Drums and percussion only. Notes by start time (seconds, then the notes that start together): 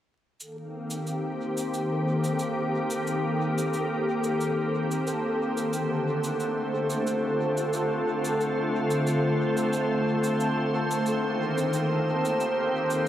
0.40 cabasa
0.90 cabasa
1.07 cabasa
1.57 cabasa
1.74 cabasa
2.24 cabasa
2.39 cabasa
2.90 cabasa
3.07 cabasa
3.58 cabasa
3.74 cabasa
4.24 cabasa
4.41 cabasa
4.91 cabasa
5.07 cabasa
5.57 cabasa
5.73 cabasa
6.24 cabasa
6.40 cabasa
6.90 cabasa
7.07 cabasa
7.57 cabasa
7.73 cabasa
8.25 cabasa
8.41 cabasa
8.90 cabasa
9.07 cabasa
9.57 cabasa
9.73 cabasa
10.24 cabasa
10.40 cabasa
10.91 cabasa
11.06 cabasa
11.58 cabasa
11.73 cabasa
12.25 cabasa
12.40 cabasa
12.90 cabasa